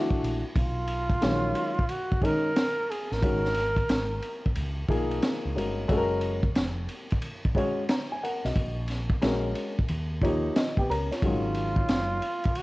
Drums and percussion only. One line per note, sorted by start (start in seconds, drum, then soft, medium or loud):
0.11 kick medium
0.24 ride medium
0.56 kick loud
0.56 ride medium
0.88 ride medium
1.10 kick medium
1.10 ride soft
1.22 snare medium
1.22 hi-hat pedal soft
1.22 ride medium
1.55 ride medium
1.79 kick medium
1.89 ride medium
2.12 kick medium
2.22 kick medium
2.22 ride medium
2.56 snare loud
2.56 hi-hat pedal medium
2.56 ride medium
2.91 ride medium
3.12 snare soft
3.23 kick loud
3.23 ride medium
3.45 snare soft
3.54 snare soft
3.54 ride medium
3.76 kick medium
3.76 ride soft
3.89 snare loud
3.89 hi-hat pedal medium
3.89 ride medium
4.22 ride medium
4.46 kick medium
4.55 ride medium
4.88 kick medium
4.88 ride medium
5.11 ride soft
5.22 snare loud
5.22 hi-hat pedal medium
5.22 ride medium
5.58 ride medium
5.89 kick loud
5.89 ride medium
6.21 ride medium
6.43 kick medium
6.55 snare loud
6.55 hi-hat pedal medium
6.55 ride medium
6.89 ride medium
7.10 kick medium
7.10 ride soft
7.22 ride medium
7.45 kick medium
7.55 kick medium
7.55 ride medium
7.89 snare loud
7.89 hi-hat pedal medium
7.89 ride medium
8.25 ride medium
8.45 snare soft
8.45 ride soft
8.56 kick loud
8.56 ride medium
8.88 snare soft
8.88 ride medium
9.10 kick medium
9.22 snare loud
9.22 hi-hat pedal medium
9.22 ride medium
9.55 ride medium
9.79 kick medium
9.88 ride medium
10.21 kick medium
10.21 ride medium
10.56 snare loud
10.56 hi-hat pedal medium
10.56 ride medium
10.77 kick medium
10.91 ride medium
11.12 snare soft
11.12 ride soft
11.22 kick loud
11.22 ride medium
11.54 ride medium
11.76 kick loud
11.88 snare loud
11.88 hi-hat pedal soft
11.88 ride medium
12.22 ride medium
12.44 kick medium
12.44 ride soft
12.55 ride medium